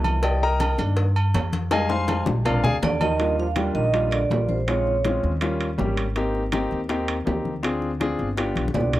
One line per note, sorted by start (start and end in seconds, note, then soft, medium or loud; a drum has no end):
0.00 0.73 C2 loud
0.00 0.20 F3 medium
0.00 0.20 B3 soft
0.00 0.20 D#4 medium
0.04 high conga medium
0.04 low agogo loud
0.23 0.42 G4 medium
0.23 0.42 D5 medium
0.23 0.42 D#5 medium
0.23 0.41 G5 medium
0.23 cowbell loud
0.23 high conga soft
0.23 low agogo medium
0.42 0.77 A#4 medium
0.42 0.77 D#5 medium
0.42 0.77 G5 medium
0.42 0.77 A#5 loud
0.42 high conga soft
0.60 cowbell medium
0.60 high conga loud
0.60 low timbale medium
0.60 low agogo loud
0.78 1.30 G2 loud
0.78 1.03 D#3 medium
0.78 1.03 A#3 soft
0.78 1.03 D4 medium
0.78 high conga medium
0.78 low agogo medium
0.97 cowbell loud
0.97 high conga soft
1.16 high conga soft
1.16 low agogo loud
1.34 2.21 F2 medium
1.34 cowbell medium
1.34 high conga medium
1.34 low timbale medium
1.34 low agogo medium
1.53 cowbell medium
1.53 high conga medium
1.71 2.41 G3 medium
1.71 2.42 G#3 medium
1.71 2.42 D#4 medium
1.71 1.90 G#4 medium
1.71 1.90 D#5 medium
1.71 1.88 F5 medium
1.71 1.88 G#5 loud
1.71 cowbell loud
1.71 high bongo loud
1.71 high conga soft
1.71 low agogo loud
1.89 2.24 C5 medium
1.89 2.24 F5 medium
1.89 2.24 G#5 medium
1.89 2.24 C6 loud
1.89 high bongo medium
1.89 high conga soft
2.08 cowbell medium
2.08 high bongo medium
2.08 high conga loud
2.08 low timbale medium
2.08 low agogo medium
2.26 2.61 A#1 loud
2.26 low bongo loud
2.26 high conga medium
2.45 2.70 G#3 medium
2.45 2.70 C4 soft
2.45 2.70 D4 medium
2.45 2.64 F4 medium
2.45 2.63 A#4 medium
2.45 2.62 D5 medium
2.45 2.63 F5 medium
2.45 cowbell loud
2.45 high conga soft
2.45 low conga medium
2.45 low agogo loud
2.64 2.81 D2 medium
2.64 2.75 G#4 medium
2.64 2.75 D5 medium
2.64 2.75 F5 medium
2.64 2.75 G#5 loud
2.64 low bongo medium
2.64 high conga soft
2.64 low conga medium
2.82 3.69 D#2 medium
2.82 3.01 D3 medium
2.82 3.01 D5 loud
2.82 cowbell medium
2.82 low bongo medium
2.82 high conga medium
2.82 low timbale medium
2.82 low agogo medium
3.01 3.36 D#3 loud
3.01 3.36 D#5 loud
3.01 low bongo medium
3.01 high conga medium
3.01 low agogo loud
3.19 3.45 G3 medium
3.19 3.46 A#3 medium
3.19 3.46 D4 medium
3.19 3.46 F4 medium
3.19 high bongo medium
3.19 high conga soft
3.19 high timbale medium
3.39 3.47 F3 medium
3.39 3.48 F5 medium
3.39 high bongo soft
3.39 high conga soft
3.56 3.82 G3 medium
3.56 3.74 G3 medium
3.56 3.83 A#3 medium
3.56 3.83 D4 medium
3.56 3.83 F4 medium
3.56 3.74 G5 medium
3.56 high bongo medium
3.56 high conga medium
3.56 high timbale medium
3.56 low timbale medium
3.74 4.27 A#1 medium
3.74 4.09 D#3 medium
3.74 4.13 D#5 loud
3.74 high bongo soft
3.74 high conga soft
3.93 4.19 G3 medium
3.93 4.20 A#3 medium
3.93 4.20 D4 medium
3.93 4.20 F4 medium
3.93 high bongo medium
3.93 high timbale medium
4.11 4.46 D3 medium
4.11 4.50 D5 medium
4.11 high conga soft
4.11 high timbale loud
4.30 5.17 A#1 medium
4.30 4.56 G3 medium
4.30 4.56 A#3 medium
4.30 4.57 D4 medium
4.30 4.57 F4 medium
4.30 high bongo soft
4.30 low bongo medium
4.30 high conga medium
4.30 low timbale medium
4.48 4.66 C3 medium
4.48 4.68 C5 medium
4.48 high bongo soft
4.48 high conga medium
4.67 5.19 C#3 medium
4.67 4.94 G#3 medium
4.67 4.94 C4 medium
4.67 4.94 C#4 medium
4.67 4.95 F4 medium
4.67 5.20 C#5 medium
4.67 high bongo medium
4.67 high conga soft
4.67 high timbale medium
4.86 high bongo soft
4.86 high conga soft
5.04 5.30 G#3 medium
5.04 5.31 C4 medium
5.04 5.31 C#4 medium
5.04 5.31 F4 medium
5.04 high bongo medium
5.04 high conga medium
5.04 high timbale medium
5.04 low timbale medium
5.23 5.75 D#2 medium
5.23 high bongo soft
5.23 high conga soft
5.41 5.67 G3 medium
5.41 5.68 A#3 medium
5.41 5.68 C#4 medium
5.41 5.68 F4 medium
5.41 high bongo medium
5.41 high timbale medium
5.60 high conga soft
5.60 high timbale medium
5.78 6.66 G#1 medium
5.78 6.04 G3 medium
5.78 6.04 A#3 medium
5.78 6.05 C#4 medium
5.78 6.05 G4 medium
5.78 high bongo soft
5.78 low bongo medium
5.78 high conga medium
5.78 low timbale medium
5.97 high bongo soft
5.97 high conga soft
5.97 high timbale medium
6.16 6.42 A#3 medium
6.16 6.42 C4 medium
6.16 6.42 D#4 medium
6.16 6.42 G4 loud
6.16 high bongo medium
6.16 high conga soft
6.16 high timbale medium
6.35 high bongo soft
6.35 high conga soft
6.52 6.78 A#3 medium
6.52 6.79 C4 medium
6.52 6.79 D#4 medium
6.52 6.79 G4 loud
6.52 high bongo medium
6.52 high conga medium
6.52 high timbale medium
6.52 low timbale medium
6.71 7.23 D#2 medium
6.71 high bongo soft
6.71 high conga soft
6.89 7.15 A#3 medium
6.89 7.15 C4 medium
6.89 7.16 D#4 medium
6.89 7.16 G4 loud
6.89 high bongo medium
6.89 high conga soft
6.89 high timbale medium
7.08 high conga soft
7.08 high timbale medium
7.25 8.14 D2 medium
7.25 7.52 A#3 medium
7.25 7.52 C4 medium
7.25 7.52 D#4 medium
7.25 7.53 G4 medium
7.25 high bongo soft
7.25 low bongo medium
7.25 high conga medium
7.25 low timbale medium
7.45 high bongo soft
7.45 high conga medium
7.63 7.89 C4 medium
7.63 7.89 D4 medium
7.63 7.90 F4 medium
7.63 7.90 G#4 medium
7.63 high bongo medium
7.63 high conga soft
7.63 high timbale medium
7.82 high bongo soft
7.82 high conga soft
8.00 8.26 C4 medium
8.00 8.27 D4 medium
8.00 8.27 F4 medium
8.00 8.27 G#4 loud
8.00 high bongo medium
8.00 high conga medium
8.00 high timbale medium
8.00 low timbale medium
8.18 8.54 G1 medium
8.18 high bongo soft
8.18 high conga soft
8.37 8.63 B3 medium
8.37 8.64 D4 medium
8.37 8.64 F4 medium
8.37 8.64 G4 medium
8.37 high bongo medium
8.37 high conga soft
8.37 high timbale medium
8.56 8.74 B1 medium
8.56 high conga medium
8.56 high timbale medium
8.68 high conga medium
8.74 9.00 C2 medium
8.74 8.92 D3 medium
8.74 9.00 B3 medium
8.74 9.00 D4 medium
8.74 9.00 F4 medium
8.74 9.00 G4 medium
8.74 8.93 D5 medium
8.74 high bongo soft
8.74 low bongo medium
8.74 low timbale medium
8.80 low conga medium
8.93 9.00 D3 medium
8.93 9.00 D5 medium
8.93 high bongo soft
8.93 low conga medium
8.93 high timbale medium